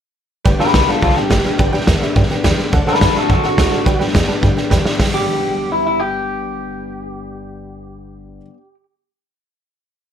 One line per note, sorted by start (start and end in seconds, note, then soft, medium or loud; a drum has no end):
0.45 0.54 G1 medium
0.45 0.60 G2 medium
0.45 0.60 D3 medium
0.45 0.60 G3 medium
0.45 0.61 B3 medium
0.45 0.60 D4 medium
0.45 0.58 G4 loud
0.45 0.54 B4 loud
0.45 0.54 D5 medium
0.45 0.54 G5 loud
0.45 kick loud
0.45 snare soft
0.58 0.74 B3 soft
0.58 0.75 D4 medium
0.58 0.74 G4 medium
0.58 0.68 B4 loud
0.58 0.74 B4 medium
0.58 0.68 D5 medium
0.58 0.68 G5 loud
0.58 muted upright bass stroke medium
0.58 snare soft
0.63 0.74 G3 soft
0.67 snare soft
0.72 0.83 B1 medium
0.72 0.88 G2 medium
0.72 0.89 D3 medium
0.72 0.89 G3 medium
0.72 0.88 B3 medium
0.72 0.87 D4 medium
0.72 0.88 G4 medium
0.72 0.82 B4 medium
0.72 0.89 B4 medium
0.72 0.82 D5 medium
0.72 0.82 G5 medium
0.72 kick medium
0.72 snare loud
0.72 hi-hat pedal medium
0.76 0.86 G4 medium
0.87 1.00 G3 soft
0.87 1.02 B3 soft
0.87 1.03 D4 medium
0.87 1.01 F4 medium
0.87 1.02 G4 medium
0.87 1.02 A4 medium
0.87 0.97 B4 medium
0.87 0.97 D5 medium
0.87 0.97 F#5 medium
0.87 muted upright bass stroke medium
0.87 snare soft
1.01 1.11 B1 medium
1.01 1.16 G3 medium
1.01 1.17 B3 medium
1.01 1.16 D4 medium
1.01 1.16 F4 medium
1.01 1.15 G4 medium
1.01 1.17 A4 medium
1.01 1.11 B4 medium
1.01 1.11 D5 medium
1.01 1.11 F#5 medium
1.01 kick loud
1.01 snare soft
1.10 snare soft
1.16 1.30 G3 medium
1.16 1.31 B3 medium
1.16 1.31 D4 medium
1.16 1.31 G4 medium
1.16 1.72 G4 medium
1.16 1.25 B4 medium
1.16 1.25 D5 medium
1.16 1.25 G5 medium
1.16 snare soft
1.30 1.40 G1 loud
1.30 1.45 G2 medium
1.30 1.45 D3 medium
1.30 1.45 G3 medium
1.30 1.45 B3 medium
1.30 1.44 D4 medium
1.30 1.43 G4 medium
1.30 1.39 B4 loud
1.30 1.39 D5 medium
1.30 1.39 G5 loud
1.30 kick medium
1.30 snare loud
1.30 hi-hat pedal medium
1.44 1.58 G3 soft
1.44 1.59 B3 medium
1.44 1.59 D4 soft
1.44 1.59 G4 medium
1.44 1.53 B4 medium
1.44 1.53 D5 medium
1.44 1.54 G5 medium
1.44 muted upright bass stroke medium
1.44 snare soft
1.58 1.68 G1 medium
1.58 1.73 G2 medium
1.58 1.74 D3 medium
1.58 1.74 G3 medium
1.58 1.74 B3 medium
1.58 1.72 D4 medium
1.58 1.71 G4 medium
1.58 1.68 B4 loud
1.58 1.68 D5 loud
1.58 1.68 G5 loud
1.58 kick loud
1.58 snare soft
1.72 1.83 D2 medium
1.72 1.87 G3 medium
1.72 1.88 B3 medium
1.72 1.88 D4 medium
1.72 1.87 G4 medium
1.72 1.82 B4 loud
1.72 1.82 D5 loud
1.72 1.82 G5 loud
1.72 snare soft
1.81 snare soft
1.86 1.96 E2 medium
1.86 2.02 G2 medium
1.86 2.02 D3 loud
1.86 2.03 G3 medium
1.86 2.03 B3 loud
1.86 2.02 D4 medium
1.86 2.01 G4 medium
1.86 1.96 B4 medium
1.86 1.96 D5 medium
1.86 1.96 G5 medium
1.86 kick medium
1.86 snare loud
1.86 hi-hat pedal medium
2.01 2.16 B3 medium
2.01 2.17 D4 medium
2.01 2.16 G4 medium
2.01 2.10 B4 medium
2.01 2.10 D5 medium
2.01 2.10 E5 medium
2.01 muted upright bass stroke medium
2.01 snare soft
2.05 2.14 G3 medium
2.15 2.25 G2 medium
2.15 2.30 G3 medium
2.15 2.31 B3 medium
2.15 2.30 D4 medium
2.15 2.29 G4 medium
2.15 2.25 B4 medium
2.15 2.24 D5 medium
2.15 2.25 G5 loud
2.15 kick loud
2.15 snare soft
2.23 snare soft
2.30 2.44 G3 medium
2.30 2.44 B3 medium
2.30 2.45 D4 medium
2.30 2.45 G4 medium
2.30 2.39 B4 medium
2.30 2.39 D5 medium
2.30 2.40 G5 loud
2.30 muted upright bass stroke medium
2.30 snare soft
2.44 2.54 E2 medium
2.44 2.59 G2 loud
2.44 2.59 D3 medium
2.44 2.59 G3 medium
2.44 2.59 B3 medium
2.44 2.59 D4 loud
2.44 2.57 G4 loud
2.44 2.53 B4 loud
2.44 2.53 D5 loud
2.44 2.53 G5 loud
2.44 kick medium
2.44 snare loud
2.44 hi-hat pedal medium
2.57 2.74 B3 medium
2.57 2.74 D4 medium
2.57 2.73 G4 medium
2.57 2.67 B4 medium
2.57 2.67 D5 medium
2.57 2.67 G5 medium
2.57 muted upright bass stroke medium
2.57 snare soft
2.62 2.73 G3 soft
2.73 2.82 D2 medium
2.73 2.87 D3 medium
2.73 2.88 F#3 medium
2.73 2.88 C4 medium
2.73 2.87 D4 medium
2.73 2.81 A4 loud
2.73 2.85 A4 medium
2.73 2.81 D5 loud
2.73 2.82 F#5 loud
2.73 kick loud
2.73 snare soft
2.87 3.01 C4 soft
2.87 3.01 D4 medium
2.87 3.02 D4 soft
2.87 3.01 A4 soft
2.87 2.96 A4 medium
2.87 3.01 B4 medium
2.87 2.96 D5 medium
2.87 2.96 F#5 loud
2.87 muted upright bass stroke medium
2.87 snare soft
2.94 snare soft
3.00 3.10 F#2 medium
3.00 3.16 D3 medium
3.00 3.16 F#3 medium
3.00 3.16 C4 medium
3.00 3.15 D4 medium
3.00 3.16 D4 medium
3.00 3.09 A4 medium
3.00 3.14 A4 medium
3.00 3.16 B4 medium
3.00 3.10 D5 medium
3.00 3.10 F#5 medium
3.00 kick medium
3.00 snare loud
3.00 hi-hat pedal medium
3.14 3.30 D4 medium
3.14 3.30 F#4 medium
3.14 3.23 A4 medium
3.14 3.30 A4 medium
3.14 3.24 D5 medium
3.14 3.24 E5 medium
3.14 muted upright bass stroke medium
3.14 snare soft
3.19 3.29 C4 soft
3.29 3.39 F#2 medium
3.29 3.44 F#3 medium
3.29 3.45 C4 medium
3.29 3.44 D4 medium
3.29 3.44 F#4 medium
3.29 3.38 A4 medium
3.29 3.45 A4 medium
3.29 3.42 A4 medium
3.29 3.38 D5 medium
3.29 3.38 F#5 medium
3.29 kick loud
3.29 snare soft
3.43 3.58 C4 soft
3.43 3.59 D4 medium
3.43 4.00 F#4 medium
3.43 3.58 A4 medium
3.43 3.52 A4 medium
3.43 3.53 D5 medium
3.43 3.53 F#5 medium
3.43 muted upright bass stroke medium
3.43 snare soft
3.58 3.67 D2 loud
3.58 3.73 D3 medium
3.58 3.73 F#3 medium
3.58 3.73 C4 medium
3.58 3.73 D4 medium
3.58 3.67 A4 loud
3.58 3.71 A4 medium
3.58 3.67 D5 medium
3.58 3.67 F#5 loud
3.58 kick medium
3.58 snare loud
3.58 hi-hat pedal medium
3.72 3.87 C4 soft
3.72 3.87 D4 medium
3.72 3.81 A4 medium
3.72 3.87 A4 medium
3.72 3.81 D5 medium
3.72 3.81 F#5 medium
3.72 muted upright bass stroke medium
3.72 snare soft
3.85 3.95 G1 medium
3.85 4.01 G2 medium
3.85 4.01 D3 loud
3.85 4.01 G3 medium
3.85 4.01 B3 loud
3.85 4.00 D4 medium
3.85 3.99 G4 loud
3.85 3.95 B4 loud
3.85 3.95 D5 loud
3.85 3.95 G5 loud
3.85 kick loud
3.85 snare soft
3.99 4.09 D2 medium
3.99 4.14 B3 soft
3.99 4.15 D4 medium
3.99 4.15 G4 medium
3.99 4.09 B4 loud
3.99 4.09 D5 loud
3.99 4.09 G5 loud
3.99 snare soft
4.04 4.14 G3 medium
4.04 snare soft
4.14 4.24 E2 medium
4.14 4.29 G2 medium
4.14 4.29 D3 medium
4.14 4.29 G3 medium
4.14 4.29 B3 medium
4.14 4.28 D4 loud
4.14 4.27 G4 loud
4.14 4.23 B4 medium
4.14 4.23 D5 medium
4.14 4.23 G5 medium
4.14 kick medium
4.14 snare loud
4.14 hi-hat pedal medium
4.28 4.42 B3 medium
4.28 4.44 D4 medium
4.28 4.43 G4 medium
4.28 4.37 B4 medium
4.28 4.37 D5 medium
4.28 4.37 A5 loud
4.28 muted upright bass stroke medium
4.28 snare soft
4.32 4.41 G3 soft
4.41 4.52 G2 medium
4.41 4.57 G3 medium
4.41 4.58 B3 medium
4.41 4.57 D4 medium
4.41 4.51 B4 loud
4.41 4.51 D5 medium
4.41 4.52 G5 loud
4.41 kick loud
4.41 snare soft
4.46 4.55 G4 medium
4.56 4.72 G3 medium
4.56 4.72 B3 medium
4.56 4.72 D4 medium
4.56 4.71 G4 medium
4.56 4.66 B4 medium
4.56 4.66 D5 medium
4.56 4.66 G5 medium
4.56 muted upright bass stroke medium
4.56 snare soft
4.70 4.80 E2 medium
4.70 4.86 G2 medium
4.70 4.86 D3 medium
4.70 4.86 G3 medium
4.70 4.87 B3 medium
4.70 4.86 D4 loud
4.70 4.80 B4 loud
4.70 4.80 D5 loud
4.70 4.80 G5 loud
4.70 kick medium
4.70 snare medium
4.70 hi-hat pedal medium
4.74 4.85 G4 medium
4.85 5.01 B3 medium
4.85 5.01 D4 medium
4.85 5.00 G4 medium
4.85 4.94 B4 medium
4.85 4.94 D5 medium
4.85 4.94 G5 medium
4.85 muted upright bass stroke medium
4.85 snare medium
4.89 5.02 G3 soft
4.95 8.45 G2 medium
4.95 8.35 B4 medium
4.95 8.37 D5 medium
5.00 8.38 G1 medium
5.00 8.50 D3 medium
5.00 8.53 G3 medium
5.00 8.40 G5 medium
5.00 kick loud
5.00 snare loud
5.00 open hi-hat medium
5.07 8.57 B3 medium
5.07 8.61 D4 medium
5.14 8.64 G4 medium
5.14 5.69 G4 loud
5.72 5.85 E4 medium
5.87 6.00 E4 medium
6.00 8.74 G4 loud